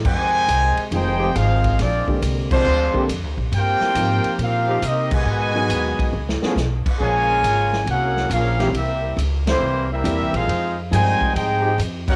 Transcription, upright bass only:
0.05 F2
0.48 C2
0.77 muted upright bass stroke
0.91 F1
1.35 G#1
1.79 A#1
2.07 muted upright bass stroke
2.22 C2
2.65 D2
2.94 muted upright bass stroke
3.09 F2
3.23 D2
3.37 A#1
3.52 G2
3.81 muted upright bass stroke
3.95 G#2
4.24 muted upright bass stroke
4.38 A#2
4.82 C3
5.25 G#2
5.69 D#2
5.99 muted upright bass stroke
6.13 C#2
6.42 muted upright bass stroke
6.56 B1
6.86 muted upright bass stroke
7.00 A#1
7.43 G#1
7.86 C2
8.30 A#1
8.73 C2
9.17 C#2
9.60 C2
10.04 E2
10.19 C2
10.33 A#1
10.48 F2
10.92 G2
11.21 muted upright bass stroke
11.35 G#2
11.78 F2

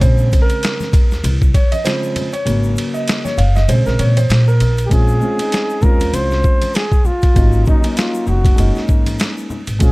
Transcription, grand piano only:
0.00 C#3 G#3 C4 C5
0.42 A#4
1.54 C#5
1.72 D#5
1.84 C#3 F3 G#3 C4 C5
2.33 C#5
2.45 C#3 F#3 A#3
2.94 D#5
3.25 C#5
3.38 F5
3.56 D#5
3.69 C#3 G#3 C4 C5
3.86 A#4
3.99 C#5
4.17 C5
4.48 A#4
4.89 G#3 C4 C#4 F4
5.20 G#3 C4 C#4 F4
5.38 G#3 C4 C#4 D#4
5.81 G#3 C4 C#4 F4
7.34 F#3 A#3 C#4 D#4
7.65 F#3 A#3 C#4 D#4
7.81 F#3 A#3 C#4 D#4
8.56 G#3 A#3 C#4 D#4
9.79 G#3 C4 C#4 F4

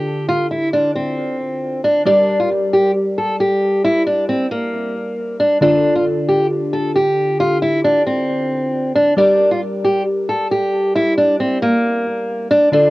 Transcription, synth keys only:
Already playing: D3 D4 F4 A4
2.05 G3 G4 A#4 D5
5.61 D3 D4 F4 A4
9.17 G3 G4 A#4 D5
12.72 D3 D4 F4 A4

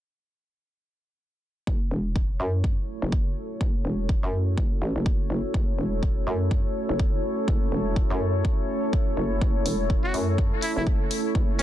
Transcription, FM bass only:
1.67 F#1
1.91 E1
2.40 F#2
3.02 F#1
3.61 F#1
3.85 E1
4.23 F#2
4.58 F#1
4.82 A1
4.96 F#1
5.30 F#1
5.54 F#1
5.78 E1
6.27 F#2
6.89 F#1
7.48 F#1
7.72 E1
8.10 F#2
9.17 F#1
9.41 F#1
9.66 E1
10.14 F#2
10.76 F#1
11.35 F#1
11.59 E1

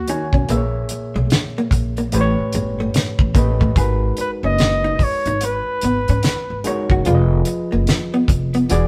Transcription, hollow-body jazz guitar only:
0.10 D#4
0.34 C#4
0.50 A#3
0.91 muted hollow-body jazz guitar stroke
1.16 G#3
1.58 A#3
1.73 muted hollow-body jazz guitar stroke
1.98 A#3
2.14 muted hollow-body jazz guitar stroke
2.55 G#3
2.80 A3
2.96 muted hollow-body jazz guitar stroke
3.35 A#3
3.61 A3
3.77 G#4
4.18 muted hollow-body jazz guitar stroke
4.44 C#4
4.84 D#4
5.01 muted hollow-body jazz guitar stroke
5.27 D#4
5.43 muted hollow-body jazz guitar stroke
5.84 B3
6.10 C#4
6.24 muted hollow-body jazz guitar stroke
6.67 D#4
6.91 F#4
7.06 F4
7.47 muted hollow-body jazz guitar stroke
7.72 A#3
8.14 B3
8.30 muted hollow-body jazz guitar stroke
8.55 B3
8.70 muted hollow-body jazz guitar stroke

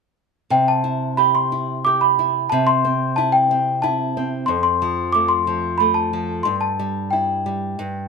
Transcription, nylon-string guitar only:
0.50 C3
0.84 E4
1.18 G4
1.52 E4
1.86 G4
2.19 E4
2.52 C3
2.85 C4
3.18 E4
3.51 C4
3.83 E4
4.17 C4
4.48 F2
4.82 F3
5.15 A3
5.47 F3
5.80 A3
6.13 F3
6.45 G2
6.79 G3
7.13 E4
7.46 G3
7.79 G2

